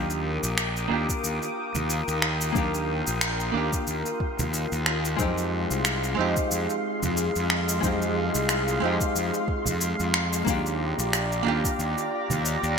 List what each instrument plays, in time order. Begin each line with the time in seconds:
Already playing: fingered electric bass D#2, hollow-body jazz guitar A#3 D4 F4 G4, synth texture F4 F5, analog synth pad A#4 G5 D6 D#6
0.10 cabasa
0.43 fingered electric bass A#1, cabasa
0.58 finger snap, cabasa
0.77 cabasa
0.88 fingered electric bass D#2, hollow-body jazz guitar A#3 D4 F4
0.93 hollow-body jazz guitar G4
1.09 kick, cabasa
1.24 fingered electric bass D#2, cabasa
1.42 cabasa
1.75 fingered electric bass D#2, low conga, cabasa
1.90 cabasa
2.08 fingered electric bass D#2, cabasa
2.22 finger snap
2.41 cabasa
2.52 fingered electric bass D#2, hollow-body jazz guitar A#3 D4 F4, analog synth pad C6, kick, high conga, cabasa
2.58 hollow-body jazz guitar G4
2.74 cabasa
3.07 fingered electric bass A#1, cabasa
3.21 finger snap, cabasa
3.40 cabasa
3.52 fingered electric bass D#2, hollow-body jazz guitar A#3 D4 F4
3.57 hollow-body jazz guitar G4
3.73 kick, cabasa
3.87 fingered electric bass D#2, cabasa
4.06 cabasa
4.20 kick
4.39 fingered electric bass D#2, low conga, cabasa
4.54 cabasa
4.72 fingered electric bass D#2, cabasa
4.86 finger snap
5.05 cabasa
5.17 fingered electric bass F2, hollow-body jazz guitar G#3 C4 D#4, analog synth pad G#3 F5, kick, high conga, cabasa
5.22 hollow-body jazz guitar G4
5.38 cabasa
5.71 fingered electric bass C2, cabasa
5.85 finger snap, cabasa
6.04 cabasa
6.15 fingered electric bass F2, hollow-body jazz guitar G#3 C4
6.19 hollow-body jazz guitar D#4 G4
6.37 kick, cabasa
6.51 fingered electric bass F2, cabasa
6.70 cabasa
7.03 fingered electric bass F2, low conga, cabasa
7.17 cabasa
7.36 fingered electric bass F2, cabasa
7.50 finger snap
7.69 cabasa
7.81 fingered electric bass F2, hollow-body jazz guitar G#3 C4 D#4, kick, high conga, cabasa
7.86 hollow-body jazz guitar G4
8.02 cabasa
8.35 fingered electric bass C2, cabasa
8.49 finger snap, cabasa
8.68 cabasa
8.80 fingered electric bass F2, hollow-body jazz guitar G#3 C4 D#4
8.85 hollow-body jazz guitar G4
9.00 kick, cabasa
9.15 fingered electric bass F2, cabasa
9.34 cabasa
9.48 kick
9.66 fingered electric bass F2, low conga, cabasa
9.81 cabasa
10.00 fingered electric bass F2, cabasa
10.14 finger snap
10.33 cabasa
10.45 fingered electric bass D#2, hollow-body jazz guitar A#3 D4 F4, analog synth pad G4 D5 A#5, kick, high conga, cabasa
10.50 hollow-body jazz guitar G4
10.66 cabasa
10.99 fingered electric bass A#1, cabasa
11.13 finger snap, cabasa
11.32 cabasa
11.43 fingered electric bass D#2, hollow-body jazz guitar A#3 D4 F4
11.48 hollow-body jazz guitar G4
11.64 kick, cabasa
11.79 fingered electric bass D#2, cabasa
11.98 cabasa
12.30 fingered electric bass D#2, low conga, cabasa
12.45 cabasa
12.63 fingered electric bass D#2, cabasa